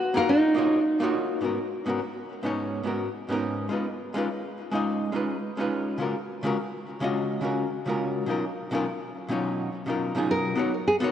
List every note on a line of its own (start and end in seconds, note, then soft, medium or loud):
0.00 0.18 F#4 loud
0.14 0.53 A#3 medium
0.14 0.54 D#4 medium
0.14 0.54 F4 medium
0.14 0.54 F#4 medium
0.14 0.29 A#4 medium
0.14 0.55 F5 loud
0.29 1.11 D#4 medium
0.55 0.78 A#3 medium
0.55 0.79 D#4 medium
0.55 0.79 F4 medium
0.55 0.79 F#4 medium
0.55 0.80 C#5 medium
1.00 1.39 A#3 medium
1.00 1.39 D#4 medium
1.00 1.40 F4 medium
1.00 1.40 F#4 medium
1.00 1.41 C#5 medium
1.41 1.57 G#2 medium
1.41 1.57 B3 medium
1.41 1.57 C#4 medium
1.41 1.58 F#4 medium
1.41 1.59 A#4 medium
1.86 1.98 G#2 medium
1.86 1.98 B3 medium
1.86 1.99 C#4 medium
1.86 1.99 F#4 medium
1.86 2.00 A#4 medium
2.43 2.82 G#2 medium
2.43 2.82 B3 medium
2.43 2.82 C#4 medium
2.43 2.83 D#4 medium
2.43 2.83 C#5 medium
2.83 3.06 G#2 medium
2.83 3.07 B3 medium
2.83 3.07 C#4 medium
2.83 3.08 F#4 medium
2.83 3.08 A#4 medium
3.29 3.67 G#2 medium
3.29 3.68 B3 medium
3.29 3.68 C#4 medium
3.29 3.69 D#4 medium
3.29 3.69 A#4 medium
3.69 3.85 G#3 medium
3.69 3.86 C#4 medium
3.69 3.86 D#4 medium
3.69 3.87 F4 medium
3.69 3.87 B4 medium
4.14 4.26 G#3 medium
4.14 4.27 C#4 medium
4.14 4.27 D#4 medium
4.14 4.28 F4 medium
4.14 4.28 B4 medium
4.71 5.10 G#3 medium
4.71 5.11 C#4 medium
4.71 5.11 D#4 medium
4.71 5.12 F4 medium
4.71 5.12 D#5 medium
5.12 5.35 G#3 medium
5.12 5.36 C#4 medium
5.12 5.36 D#4 medium
5.12 5.37 F4 medium
5.12 5.37 B4 medium
5.57 5.96 G#3 medium
5.57 5.96 C#4 medium
5.57 5.97 D#4 medium
5.57 5.97 F4 medium
5.57 5.98 B4 medium
5.98 6.14 C#3 medium
5.98 6.14 G#3 medium
5.98 6.15 C#4 medium
5.98 6.15 F4 medium
5.98 6.15 F#4 medium
5.98 6.16 A#4 medium
6.43 6.55 C#3 medium
6.43 6.55 G#3 medium
6.43 6.56 C#4 medium
6.43 6.56 F4 medium
6.43 6.57 F#4 medium
6.43 6.57 A#4 loud
7.00 7.39 C#3 medium
7.00 7.39 G#3 medium
7.00 7.40 C#4 medium
7.00 7.40 F4 medium
7.00 7.40 F#4 medium
7.00 7.41 D#5 medium
7.41 7.64 C#3 medium
7.41 7.64 G#3 medium
7.41 7.65 C#4 medium
7.41 7.65 F4 medium
7.41 7.65 F#4 medium
7.41 7.66 A#4 medium
7.86 8.25 C#3 medium
7.86 8.25 G#3 medium
7.86 8.25 C#4 medium
7.86 8.26 F4 medium
7.86 8.26 F#4 medium
7.86 8.26 A#4 medium
8.26 8.42 B2 medium
8.26 8.43 F#3 medium
8.26 8.43 C#4 medium
8.26 8.44 D#4 medium
8.26 8.44 F4 medium
8.26 8.44 A#4 medium
8.71 8.83 B2 medium
8.71 8.84 F#3 medium
8.71 8.84 C#4 medium
8.71 8.84 D#4 medium
8.71 8.85 F4 medium
8.71 8.85 A#4 loud
9.28 9.67 B2 medium
9.28 9.68 F#3 medium
9.28 9.68 C#4 medium
9.28 9.69 D#4 medium
9.28 9.69 F4 medium
9.28 9.69 C#5 medium
9.86 10.11 B2 medium
9.86 10.12 F#3 medium
9.86 10.12 C#4 medium
9.86 10.12 D#4 medium
9.86 10.13 F4 medium
9.86 10.13 A#4 medium
10.14 10.53 B2 medium
10.14 10.54 F#3 medium
10.14 10.54 C#4 medium
10.14 10.54 D#4 medium
10.14 10.55 F4 medium
10.14 10.55 G#4 medium
10.31 10.83 A#4 medium
10.55 10.71 B3 medium
10.55 10.72 D#4 medium
10.55 10.72 F#4 medium
10.55 10.73 A#4 medium
10.55 10.73 C#5 medium
10.87 10.95 G#4 medium
11.00 11.12 B3 loud
11.00 11.12 D#4 medium
11.00 11.12 F#4 medium
11.00 11.12 A#4 medium
11.00 11.12 C#5 loud